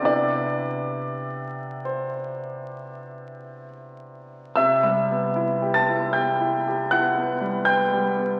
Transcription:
\new Staff \with { instrumentName = "Grand piano" } { \time 5/4 \key c \lydian \tempo 4 = 69 << { d''2 c''2 r4 | <e'' e'''>4. <a'' a'''>8 <g'' g'''>4 <fis'' fis'''>4 <g'' g'''>4 | } \\ { <c b d' e' g'>1~ <c b d' e' g'>4 | \tuplet 3/2 { c8 g8 b8 e'8 g'8 e'8 g'8 e'8 g'8 e'8 b8 g8 b8 g8 b8 } | } >> }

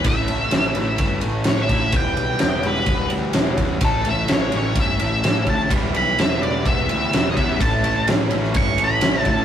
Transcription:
<<
  \new Staff \with { instrumentName = "Lead electric guitar" } { \time 4/4 \key a \mixolydian \tempo 4 = 127 e''2~ e''8 r8 cis''16 e''8. | g''4. b'4 r4. | a'8 e''8 cis''8 cis''8 e''4. a''8 | r8 b''8 e''8 d''8 e''4~ e''16. dis''32 e''8 |
a''4 r4 cis'''8 b''4 a''8 | }
  \new Staff \with { instrumentName = "Clean electric guitar" } { \time 4/4 \key a \mixolydian a,8 a8 cis'8 e'8 cis'8 a8 cis'8 e'8 | e8 g8 b8 e'8 b8 g8 b8 e'8 | a,8 a8 cis'8 e'8 cis'8 a8 cis'8 e'8 | e8 g8 b8 e'8 b8 g8 b8 e'8 |
a,8 a8 cis'8 e'8 cis'8 a8 cis'8 e'8 | }
  \new Staff \with { instrumentName = "Distorted electric guitar" } { \time 4/4 \key a \mixolydian <a, e a cis' e'>4. <a, e a cis' e'>2~ <a, e a cis' e'>8 | <e g b e'>4. <e g b e'>2~ <e g b e'>8 | <a, e a cis' e'>4. <a, e a cis' e'>2~ <a, e a cis' e'>8 | <e g b e'>4. <e g b e'>2~ <e g b e'>8 |
<a, e a cis' e'>4. <a, e a cis' e'>2~ <a, e a cis' e'>8 | }
  \new Staff \with { instrumentName = "Overdriven electric guitar" } { \time 4/4 \key a \mixolydian r1 | r1 | r1 | <e g b e'>2.~ <e g b e'>8 <e g b e'>8 |
<a, e a cis' e'>2.~ <a, e a cis' e'>8 <a, e a cis' e'>8 | }
  \new Staff \with { instrumentName = "Picked electric bass" } { \clef bass \time 4/4 \key a \mixolydian a,,8 a,,8 a,,8 a,,8 g,,8 a,,8 a,,8 a,8 | e,,8 b,,8 e,,8 e,,8 e,,8 d,8 e,,8 e,8 | a,,8 a,,8 a,,8 a,,8 g,,8 a,,8 a,,8 d,8 | e,,8 b,,8 e,,8 e,,8 e,,8 d,8 e,,8 e,8 |
a,,8 a,,8 a,,8 a,,8 g,,8 a,,8 a,,8 a,8 | }
  \new DrumStaff \with { instrumentName = "Drums" } \drummode { \time 4/4 <bd cymr>8 cymr8 <cymr sn>8 cymr8 <bd cymr>8 cymr8 <cymr sn>8 <bd cymr>8 | <bd cymr>8 cymr8 <cymr sn>8 cymr8 <bd cymr>8 cymr8 <cymr sn>8 <bd cymr>8 | <bd cymr>8 cymr8 <cymr sn>8 cymr8 <bd cymr>8 cymr8 <cymr sn>8 <bd cymr>8 | <bd cymr>8 cymr8 <cymr sn>8 cymr8 <bd cymr>8 cymr8 <cymr sn>16 sn16 <bd cymr>8 |
<bd cymr>8 cymr8 <cymr sn>8 cymr16 sn16 <bd cymr>8 cymr8 <cymr sn>16 sn16 <bd cymr>8 | }
>>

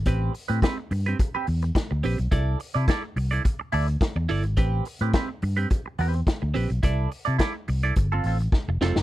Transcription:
<<
  \new Staff \with { instrumentName = "Clean electric guitar" } { \time 4/4 \key a \minor \tempo 4 = 106 <c' g' b'>8 r16 <c' g' b'>16 <c' g' b'>16 r8 <c' g' b'>16 r16 <c' g' b'>16 r4 <c' g' b'>16 r16 | <e' a' d''>8 r16 <e' a' d''>16 <e' a' d''>16 r8 <e' a' d''>16 r8 <e' a' d''>16 r8. <e' a' d''>16 r16 | <c' g' b'>8 r16 <c' g' b'>16 <c' g' b'>16 r8 <c' g' b'>16 r8 <c' g' b'>16 r8. <c' g' b'>16 r16 | <e' a' d''>8 r16 <e' a' d''>16 <e' a' d''>16 r8 <e' a' d''>16 r16 <c' f' a'>16 <c' f' a'>16 r8. <c' f' a'>16 r16 | }
  \new Staff \with { instrumentName = "Fingered electric bass" } { \clef bass \time 4/4 \key a \minor a,,8 r16 a,16 r8 g,8 r8 e,8 r16 d,16 bes,,16 b,,16 | c,8 r16 c16 r8 c,8 r8 d,8 r16 e,16 g,,16 gis,,16 | a,,8 r16 a,16 r8 g,8 r8 e,8 r16 d,16 bes,,16 b,,16 | c,8 r16 c16 r8 c,8 g,,8 a,,8 r16 f,,16 f,,16 fis,,16 | }
  \new DrumStaff \with { instrumentName = "Drums" } \drummode { \time 4/4 <hh bd>8 hho16 hh16 <hh bd sn>8 hho16 hh16 <hh bd>8 hho16 hh16 <hh bd sn>8 hho16 hh16 | <hh bd>8 hho16 hh16 <hh bd sn>8 hho16 hh16 <hh bd>8 hho16 hh16 <hh bd sn>8 hho16 hh16 | <hh bd>8 hho16 hh16 <hh bd sn>8 hho16 hh16 <hh bd>8 hho16 hh16 <hh bd sn>8 hho16 hh16 | <hh bd>8 hho16 hh16 <hh bd sn>8 hho16 hh16 <hh bd>8 hho16 hh16 <bd sn>8 sn16 sn16 | }
>>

